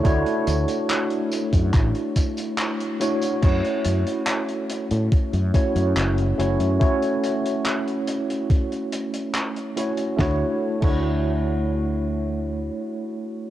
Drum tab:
CC |----------------|x---------------|----------------|---x------------|
HH |xxxxxxxxxxxxxxxx|xxxxxxxxxxxxxxxx|xxxxxxxxxxxxxxxx|----------------|
TB |x-xxx-xxx-xxx-xx|----------------|----------------|----------------|
CP |----x---x---x---|----x-------x---|----x-------x---|----------------|
SD |----------------|----------------|----------------|o---------------|
BD |o------oo-o-----|o-------o-o-----|o-------o-------|o--o------------|